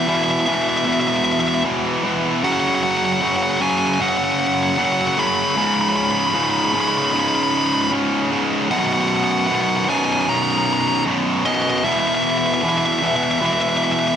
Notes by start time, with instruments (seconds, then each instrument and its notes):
0.07 distorted electric guitar E2 B2 E3, lead electric guitar E5
0.15 lead electric guitar E5
0.23 lead electric guitar E5
0.30 lead electric guitar E5
0.40 lead electric guitar E5
0.46 distorted electric guitar E2 B2 E3, lead electric guitar E5
0.54 lead electric guitar E5
0.62 lead electric guitar E5
0.69 lead electric guitar E5
0.77 lead electric guitar E5
0.85 distorted electric guitar E2 B2 E3, lead electric guitar E5
0.93 lead electric guitar E5
1.00 lead electric guitar E5
1.08 lead electric guitar E5
1.16 lead electric guitar E5
1.24 lead electric guitar E5
1.32 lead electric guitar E5
1.40 lead electric guitar E5
1.48 lead electric guitar E5
1.54 lead electric guitar E5
1.64 distorted electric guitar E2 B2 E3
2.04 distorted electric guitar E2 B2 E3
2.43 distorted electric guitar F#2 C#3 F#3, lead electric guitar F#5
2.52 lead electric guitar F#5
2.60 lead electric guitar F#5
2.68 lead electric guitar F#5
2.75 lead electric guitar F#5
2.83 lead electric guitar F#5
2.91 lead electric guitar F#5
2.97 lead electric guitar F#5
3.05 lead electric guitar F#5
3.12 lead electric guitar F#5
3.21 distorted electric guitar F#2 C#3 F#3, lead electric guitar F#5
3.27 lead electric guitar F#5
3.36 lead electric guitar F#5
3.43 lead electric guitar F#5
3.51 lead electric guitar F#5
3.57 distorted electric guitar F#2, lead electric guitar F#5
3.61 distorted electric guitar C#3 F#3, lead electric guitar G#5
3.70 lead electric guitar G#5
3.78 lead electric guitar G#5
3.87 lead electric guitar G#5
3.94 lead electric guitar G#5
4.00 distorted electric guitar F#2 C#3 F#3, lead electric guitar F#5
4.09 lead electric guitar F#5
4.17 lead electric guitar F#5
4.24 lead electric guitar F#5
4.32 lead electric guitar F#5
4.40 lead electric guitar F#5
4.47 lead electric guitar F#5
4.54 lead electric guitar F#5
4.63 lead electric guitar F#5
4.69 lead electric guitar F#5
4.76 distorted electric guitar F#2 C#3 F#3, lead electric guitar F#5
4.85 lead electric guitar F#5
4.92 lead electric guitar F#5
5.01 lead electric guitar F#5
5.07 lead electric guitar F#5
5.15 distorted electric guitar F#2 C#3 F#3, lead electric guitar F#5
5.19 lead electric guitar B5
5.27 lead electric guitar B5
5.34 lead electric guitar B5
5.42 lead electric guitar B5
5.51 lead electric guitar B5
5.56 distorted electric guitar C#2 G#2 C#3, lead electric guitar B5
5.66 lead electric guitar B5
5.74 lead electric guitar B5
5.81 lead electric guitar B5
5.89 lead electric guitar B5
5.96 lead electric guitar B5
6.04 lead electric guitar B5
6.11 lead electric guitar B5
6.19 lead electric guitar B5
6.27 lead electric guitar B5
6.34 distorted electric guitar C#2 G#2 C#3, lead electric guitar B5
6.44 lead electric guitar B5
6.50 lead electric guitar B5
6.59 lead electric guitar B5
6.65 lead electric guitar B5
6.74 distorted electric guitar C#2 G#2 C#3, lead electric guitar B5
6.80 lead electric guitar B5
6.88 lead electric guitar B5
6.97 lead electric guitar B5
7.05 lead electric guitar B5
7.12 distorted electric guitar C#2 G#2 C#3, lead electric guitar B5
7.20 lead electric guitar B5
7.27 lead electric guitar B5
7.35 lead electric guitar B5
7.43 lead electric guitar B5
7.51 lead electric guitar B5
7.57 lead electric guitar B5
7.66 lead electric guitar B5
7.73 lead electric guitar B5
7.82 lead electric guitar B5
7.92 distorted electric guitar C#2 G#2 C#3
8.31 distorted electric guitar C#2 G#2 C#3
8.70 distorted electric guitar B1 F#2 B2, lead electric guitar F#5
8.79 lead electric guitar F#5
8.87 lead electric guitar F#5
8.93 lead electric guitar F#5
9.01 lead electric guitar F#5
9.08 lead electric guitar F#5
9.16 lead electric guitar F#5
9.24 lead electric guitar F#5
9.31 lead electric guitar F#5
9.39 lead electric guitar F#5
9.47 distorted electric guitar B1 F#2 B2, lead electric guitar F#5
9.55 lead electric guitar F#5
9.61 lead electric guitar F#5
9.69 lead electric guitar F#5
9.77 lead electric guitar F#5
9.84 distorted electric guitar B1, lead electric guitar F#5
9.89 distorted electric guitar F#2 B2, lead electric guitar G#5
9.98 lead electric guitar G#5
10.04 lead electric guitar G#5
10.13 lead electric guitar G#5
10.21 lead electric guitar G#5
10.27 distorted electric guitar B1 F#2 B2, lead electric guitar A#5
10.36 lead electric guitar A#5
10.43 lead electric guitar A#5
10.50 lead electric guitar A#5
10.58 lead electric guitar A#5
10.65 lead electric guitar A#5
10.73 lead electric guitar A#5
10.81 lead electric guitar A#5
10.88 lead electric guitar A#5
10.95 lead electric guitar A#5
11.06 distorted electric guitar B1 F#2 B2
11.45 distorted electric guitar B1 F#2 B2, lead electric guitar D#5
11.54 lead electric guitar D#5
11.62 lead electric guitar D#5
11.70 lead electric guitar D#5
11.78 lead electric guitar D#5
11.84 distorted electric guitar E2 B2 E3, lead electric guitar E5
11.92 lead electric guitar E5
11.99 lead electric guitar E5
12.08 lead electric guitar E5
12.15 lead electric guitar E5
12.23 lead electric guitar E5
12.30 lead electric guitar E5
12.38 lead electric guitar E5
12.46 lead electric guitar E5
12.54 lead electric guitar E5
12.61 distorted electric guitar E2 B2 E3, lead electric guitar E5
12.69 lead electric guitar E5
12.78 lead electric guitar E5
12.85 lead electric guitar E5
12.93 lead electric guitar E5
12.98 distorted electric guitar E2 B2 E3, lead electric guitar E5
13.07 lead electric guitar E5
13.16 lead electric guitar E5
13.23 lead electric guitar E5
13.31 lead electric guitar E5
13.39 distorted electric guitar E2 B2 E3, lead electric guitar E5
13.45 lead electric guitar E5
13.53 lead electric guitar E5
13.61 lead electric guitar E5
13.69 lead electric guitar E5
13.77 lead electric guitar E5
13.84 lead electric guitar E5
13.92 lead electric guitar E5
13.99 lead electric guitar E5
14.08 lead electric guitar E5